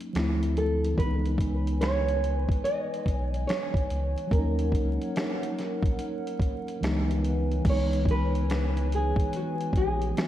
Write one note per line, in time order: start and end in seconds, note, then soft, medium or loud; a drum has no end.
0.00 0.12 F#3 medium
0.00 0.10 A#3 medium
0.00 0.12 C#4 medium
0.00 0.14 D#4 medium
0.00 0.11 F#4 medium
0.00 closed hi-hat soft
0.13 0.94 D2 medium
0.13 0.97 F3 medium
0.13 0.98 A3 medium
0.13 0.99 C4 medium
0.13 snare loud
0.13 closed hi-hat medium
0.17 1.00 E4 medium
0.17 finger snap medium
0.43 closed hi-hat soft
0.57 0.98 A4 medium
0.57 closed hi-hat medium
0.84 closed hi-hat soft
0.94 4.25 E3 medium
0.94 4.27 E3 medium
0.94 4.27 G#3 medium
0.94 4.28 B4 medium
0.94 7.60 C#5 medium
0.94 4.27 G#5 medium
0.94 kick loud
0.98 2.46 C#2 loud
0.98 4.29 B3 medium
0.98 1.80 B4 medium
0.98 closed hi-hat medium
1.06 4.31 D#4 medium
1.25 closed hi-hat soft
1.38 kick medium
1.38 closed hi-hat medium
1.67 closed hi-hat soft
1.81 2.43 C#5 loud
1.81 finger snap medium
1.81 snare medium
1.81 closed hi-hat medium
2.09 closed hi-hat soft
2.24 closed hi-hat medium
2.43 2.64 B4 loud
2.49 kick loud
2.49 closed hi-hat soft
2.64 3.47 D#5 loud
2.64 closed hi-hat medium
2.94 closed hi-hat soft
3.06 3.46 B1 medium
3.06 kick medium
3.06 closed hi-hat medium
3.34 closed hi-hat soft
3.47 4.31 C#5 loud
3.47 finger snap medium
3.47 snare loud
3.47 closed hi-hat medium
3.74 kick loud
3.74 closed hi-hat soft
3.90 4.16 C#2 medium
3.90 closed hi-hat medium
4.18 closed hi-hat soft
4.27 6.75 F#3 medium
4.27 6.77 A#3 medium
4.31 4.71 D#2 loud
4.31 6.79 C#4 medium
4.31 6.79 D#4 medium
4.31 5.94 A#4 medium
4.31 6.79 A#4 medium
4.31 6.79 F#5 medium
4.31 kick loud
4.31 closed hi-hat medium
4.39 6.81 D#4 medium
4.59 closed hi-hat soft
4.72 4.98 C#2 medium
4.72 kick medium
4.72 closed hi-hat medium
5.01 closed hi-hat soft
5.16 finger snap medium
5.16 snare loud
5.16 closed hi-hat medium
5.43 closed hi-hat soft
5.59 snare soft
5.59 closed hi-hat medium
5.83 5.97 A#1 medium
5.83 kick loud
5.83 closed hi-hat medium
5.99 closed hi-hat medium
6.27 closed hi-hat soft
6.40 kick medium
6.40 closed hi-hat medium
6.68 closed hi-hat soft
6.79 7.61 C#2 loud
6.79 7.63 E3 medium
6.79 7.59 E3 medium
6.79 7.63 G#3 medium
6.79 7.63 B4 medium
6.79 7.63 G#5 medium
6.79 closed hi-hat medium
6.84 7.66 B3 medium
6.84 7.67 D#4 medium
6.84 finger snap medium
6.84 snare loud
7.11 closed hi-hat soft
7.25 closed hi-hat medium
7.52 closed hi-hat soft
7.60 10.09 E3 medium
7.60 10.10 G#3 medium
7.65 9.13 C#2 loud
7.65 10.28 E3 medium
7.65 10.12 B3 medium
7.65 10.28 B4 medium
7.65 10.28 C#5 medium
7.65 10.28 G#5 medium
7.65 kick loud
7.65 closed hi-hat medium
7.65 crash loud
7.69 10.14 D#4 medium
7.69 8.10 C#5 loud
7.93 closed hi-hat medium
8.05 kick loud
8.05 closed hi-hat medium
8.11 8.94 B4 loud
8.35 closed hi-hat soft
8.50 finger snap medium
8.50 snare loud
8.50 closed hi-hat medium
8.77 closed hi-hat medium
8.92 9.35 G#4 medium
8.92 closed hi-hat medium
9.16 kick loud
9.16 closed hi-hat medium
9.33 9.77 F#4 medium
9.33 closed hi-hat medium
9.61 closed hi-hat soft
9.73 10.13 A#1 medium
9.73 kick medium
9.73 closed hi-hat medium
9.77 10.28 G#4 medium
10.02 closed hi-hat soft
10.13 10.28 E3 soft
10.13 10.28 G#3 soft
10.13 10.28 B3 soft
10.13 closed hi-hat medium
10.18 10.28 F#4 medium
10.18 finger snap medium
10.18 snare loud